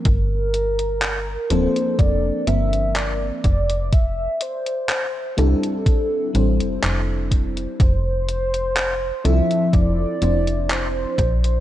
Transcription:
<<
  \new Staff \with { instrumentName = "Soft synth lead" } { \time 4/4 \key g \dorian \tempo 4 = 62 bes'4. c''8 d''8 e''8 d''8 d''8 | e''8 c''8 c''8 a'2 r8 | c''4. e''8 d''4 c''4 | }
  \new Staff \with { instrumentName = "FM electric piano" } { \time 4/4 \key g \dorian r4. <f bes c' d' a'>4 <f bes c' d' bes'>4 r8 | r4. <g c' d' e' a'>4 <g c' d' e' c''>4. | r4. <f c' d' e' a'>4 <f c' d' e' c''>4 r8 | }
  \new Staff \with { instrumentName = "FM bass" } { \clef bass \time 4/4 \key g \dorian g,,4~ g,,16 r16 d,,16 r16 f,,16 r16 g,,8. r16 f,,8~ | f,,16 r4 r16 c,16 r8. a,,16 f,,16 f,,8. r16 | f,,4~ f,,16 r16 c,16 r16 f,,16 r16 f,,8. r16 bes,,8 | }
  \new DrumStaff \with { instrumentName = "Drums" } \drummode { \time 4/4 <hh bd>8 hh16 hh16 <hc hh>8 hh16 hh16 <hh bd>8 hh16 hh16 <hc hh>8 <hh bd>16 hh16 | <hh bd>8 hh16 hh16 <hc hh>8 hh16 hh16 <hh bd>8 hh16 hh16 <hc hh>8 <hh bd>16 hh16 | <hh bd>8 hh16 hh16 <hc hh>8 hh16 hh16 <hh bd>8 hh16 hh16 <hc hh>8 <hh bd>16 hh16 | }
>>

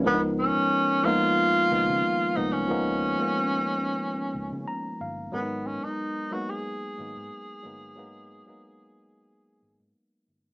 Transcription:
<<
  \new Staff \with { instrumentName = "Tenor saxophone" } { \time 4/4 \key cis \mixolydian \tempo 4 = 91 b8 cis'4 eis'2 dis'16 cis'16~ | cis'2.~ cis'8 r8 | b8 cis'16 dis'8. fis'16 gis'2~ gis'16~ | gis'2. r4 | }
  \new Staff \with { instrumentName = "Tine electric piano" } { \time 4/4 \key cis \mixolydian <eis gis b d' dis' ais'>4~ <eis gis b d' dis' ais'>16 r16 <eis gis ais b dis'>8. r16 <dis eis gis ais b dis'>8. r16 <eis gis ais b dis'>8 | <eis gis ais b dis'>8 r16 <eis gis ais b cis'>4. r8. ais''8 eis''8 | <fis gis b cis' dis' ais'>4~ <fis gis b cis' dis' ais'>16 r16 <fis gis ais b dis'>8. r16 <fis gis ais b dis'>8. r16 <fis gis ais b dis'>8 | <fis gis ais b dis'>8 r16 <fis gis ais b dis'>4. r4. r16 | }
  \new Staff \with { instrumentName = "Fingered electric bass" } { \clef bass \time 4/4 \key cis \mixolydian cis,8. r4. r16 cis,16 cis16 r8 bis,,8 | cis,8. r4. r16 cis,16 cis16 r8 g,,8 | gis,,8. r4. r16 gis,,16 gis,16 r8 g,,8 | gis,,8. r4. r16 gis,,16 gis,16 r8 g,,8 | }
>>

